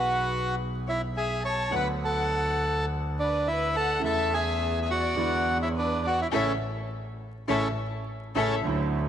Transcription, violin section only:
0.00 0.55 B4 medium
0.87 1.00 C#5 soft
1.17 1.43 E5 medium
1.44 1.71 A5 medium
1.72 1.85 F#5 medium
2.02 2.84 F#5 soft
3.20 3.45 B4 soft
3.50 3.74 B4 medium
3.75 4.01 F#5 medium
4.05 4.31 E5 medium
4.34 4.79 E5 medium
4.85 4.90 E5 soft
4.91 5.58 D5 medium
5.63 5.69 C#5 medium
5.76 6.03 B4 medium
6.04 6.18 D5 medium
6.18 6.25 C#5 soft
6.32 6.51 A4 medium
6.32 6.51 C#5 medium
6.32 6.52 E5 medium
7.48 7.68 A4 medium
7.48 7.67 C#5 medium
7.48 7.67 E5 medium
8.35 8.54 A4 medium
8.35 8.54 C#5 medium
8.35 8.54 E5 medium

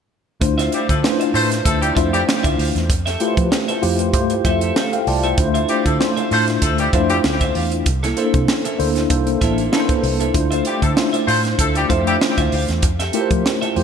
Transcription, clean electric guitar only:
0.41 muted clean electric guitar stroke soft
0.58 0.71 F4 medium
0.58 0.71 C5 medium
0.58 0.73 E5 medium
0.72 0.86 F4 medium
0.72 0.87 C5 medium
0.72 0.87 F5 medium
0.88 muted clean electric guitar stroke soft
1.03 muted clean electric guitar stroke soft
1.20 1.33 F4 medium
1.20 1.33 C5 medium
1.20 1.34 E5 medium
1.34 muted clean electric guitar stroke soft
1.51 muted clean electric guitar stroke soft
1.82 muted clean electric guitar stroke soft
1.95 2.14 F4 medium
1.95 2.12 C5 medium
1.95 2.11 E5 medium
2.13 muted clean electric guitar stroke soft
2.27 muted clean electric guitar stroke soft
2.43 2.57 F4 medium
2.43 2.58 C5 medium
2.43 2.59 E5 medium
2.58 2.72 F4 medium
2.58 2.73 C5 medium
2.58 2.73 F5 medium
2.75 muted clean electric guitar stroke soft
2.90 muted clean electric guitar stroke soft
3.06 3.19 G4 medium
3.06 3.20 A4 medium
3.06 3.20 E5 medium
3.20 3.34 G4 medium
3.20 3.35 A4 medium
3.20 3.35 E5 medium
3.37 muted clean electric guitar stroke soft
3.51 muted clean electric guitar stroke soft
3.68 3.82 G4 medium
3.68 3.82 A4 medium
3.68 3.83 E5 medium
3.83 muted clean electric guitar stroke soft
3.99 muted clean electric guitar stroke soft
4.14 muted clean electric guitar stroke soft
4.31 muted clean electric guitar stroke soft
4.45 4.62 G4 medium
4.45 4.61 A4 medium
4.45 4.60 E5 medium
4.62 4.74 G4 soft
4.62 4.74 A4 medium
4.62 4.73 E5 medium
4.76 4.94 G4 medium
4.76 4.93 A4 medium
4.76 4.92 E5 medium
4.93 muted clean electric guitar stroke soft
5.07 muted clean electric guitar stroke soft
5.24 5.36 G4 medium
5.24 5.36 A4 medium
5.24 5.35 E5 medium
5.38 muted clean electric guitar stroke soft
5.54 5.68 F4 medium
5.54 5.69 C5 medium
5.54 5.70 E5 medium
5.69 5.83 F4 medium
5.69 5.83 C5 medium
5.69 5.84 F5 medium
6.01 muted clean electric guitar stroke soft
6.17 6.30 F4 medium
6.17 6.30 C5 medium
6.17 6.31 E5 medium
6.31 muted clean electric guitar stroke soft
6.48 muted clean electric guitar stroke soft
6.79 muted clean electric guitar stroke soft
6.93 7.11 F4 medium
6.93 7.10 C5 medium
6.93 7.09 E5 medium
7.10 muted clean electric guitar stroke soft
7.25 muted clean electric guitar stroke soft
7.41 7.54 F4 medium
7.41 7.55 C5 medium
7.41 7.56 E5 medium
7.55 7.69 F4 medium
7.55 7.69 C5 medium
7.55 7.70 F5 medium
7.72 muted clean electric guitar stroke medium
7.87 muted clean electric guitar stroke soft
8.03 8.17 A#3 medium
8.03 8.17 E4 medium
8.03 8.18 A4 medium
8.18 8.31 A#3 medium
8.18 8.32 E4 medium
8.18 8.32 A4 medium
8.35 muted clean electric guitar stroke soft
8.49 muted clean electric guitar stroke soft
8.65 8.78 A#3 medium
8.65 8.78 E4 medium
8.65 8.79 A4 medium
8.79 muted clean electric guitar stroke soft
8.96 muted clean electric guitar stroke medium
9.10 muted clean electric guitar stroke soft
9.27 muted clean electric guitar stroke soft
9.41 9.59 A#3 medium
9.41 9.58 E4 medium
9.41 9.57 A4 medium
9.59 9.71 A#3 medium
9.59 9.71 E4 medium
9.59 9.70 A4 medium
9.72 9.90 A#3 medium
9.72 9.89 E4 medium
9.72 9.88 A4 medium
9.90 muted clean electric guitar stroke soft
10.03 muted clean electric guitar stroke soft
10.20 10.33 A#3 medium
10.20 10.32 E4 medium
10.20 10.32 A4 medium
10.34 muted clean electric guitar stroke soft
10.51 10.64 F4 medium
10.51 10.65 C5 medium
10.51 10.66 E5 medium
10.65 10.79 F4 medium
10.65 10.80 C5 medium
10.65 10.80 F5 medium
10.82 muted clean electric guitar stroke soft
10.96 muted clean electric guitar stroke soft
11.13 11.26 F4 medium
11.13 11.27 C5 medium
11.13 11.27 E5 medium
11.28 muted clean electric guitar stroke soft
11.44 muted clean electric guitar stroke soft
11.75 muted clean electric guitar stroke soft
11.89 12.07 F4 medium
11.89 12.06 C5 medium
11.89 12.05 E5 medium
12.07 muted clean electric guitar stroke soft
12.21 muted clean electric guitar stroke soft
12.38 12.51 F4 medium
12.38 12.52 C5 medium
12.38 12.53 E5 medium
12.52 12.66 F4 medium
12.52 12.66 C5 medium
12.52 12.67 F5 medium
12.69 muted clean electric guitar stroke medium
12.83 muted clean electric guitar stroke soft
13.00 13.13 G4 medium
13.00 13.13 A4 medium
13.00 13.14 E5 medium
13.14 13.28 G4 medium
13.14 13.28 A4 medium
13.14 13.29 E5 medium
13.31 muted clean electric guitar stroke soft
13.45 muted clean electric guitar stroke soft
13.62 13.75 G4 medium
13.62 13.75 A4 medium
13.62 13.76 E5 medium
13.76 muted clean electric guitar stroke soft

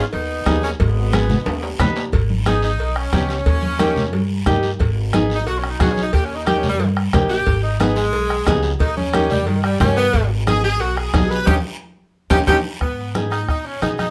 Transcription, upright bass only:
0.13 0.40 D#2 medium
0.47 0.73 D#2 loud
0.80 1.33 G#1 loud
1.46 1.73 D#2 loud
1.80 2.07 D#2 medium
2.13 2.79 G#1 medium
2.79 3.06 B1 loud
3.13 3.40 C#2 medium
3.46 4.13 D#2 medium
4.13 4.40 G2 loud
4.46 4.73 G2 medium
4.80 5.47 G#1 loud
5.47 5.74 B1 loud
5.80 6.07 B1 loud
6.13 6.80 D#2 loud
6.80 7.07 G2 medium
7.13 7.40 A#1 medium
7.47 8.13 G#1 medium
8.13 8.40 B1 loud
8.47 8.73 C#2 loud
8.80 9.47 D#2 loud
9.47 9.74 G2 loud
9.81 10.07 G2 loud
10.14 10.80 G#1 loud
10.80 11.07 B1 loud
11.14 11.41 B1 medium
11.47 11.60 D#2 loud
12.31 12.43 D#2 loud
12.48 12.60 D#2 loud
12.81 13.48 G#2 medium
13.48 13.75 B2 medium
13.82 14.09 B2 medium

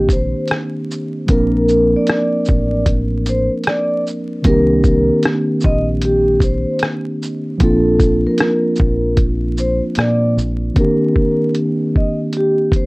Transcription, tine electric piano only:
0.00 1.24 D#3 medium
0.00 1.24 A#3 medium
0.00 1.25 C4 medium
0.00 1.26 D4 soft
0.00 1.27 G4 medium
1.27 4.39 F3 medium
1.27 4.40 A#3 medium
1.27 4.41 C4 medium
1.32 4.42 D4 medium
1.32 4.43 A#4 medium
4.43 7.55 D#3 medium
4.43 7.56 A#3 medium
4.43 7.57 C4 medium
4.47 7.58 D4 medium
4.47 7.58 G4 medium
7.58 10.71 F3 medium
7.58 10.72 A#3 medium
7.58 10.73 C4 medium
7.63 10.73 D4 medium
7.63 10.74 F4 medium
10.74 10.83 D3 soft
10.74 12.86 A#3 soft
10.74 12.86 C4 soft
10.79 12.86 D#3 medium
10.79 12.86 D4 medium
10.79 12.86 G4 medium

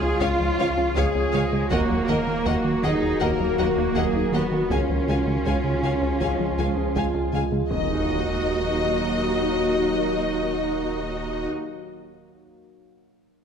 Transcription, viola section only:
0.00 0.93 F4 medium
0.96 1.71 G#4 medium
1.70 2.08 F#4 medium
2.08 2.46 A#4 medium
2.46 2.84 F#4 medium
2.83 3.21 G#4 medium
3.21 3.58 A#4 medium
3.58 3.96 F#4 medium
3.96 4.34 G#4 medium
4.34 4.71 F#4 medium
4.72 7.30 F4 medium
7.72 11.48 F#4 medium

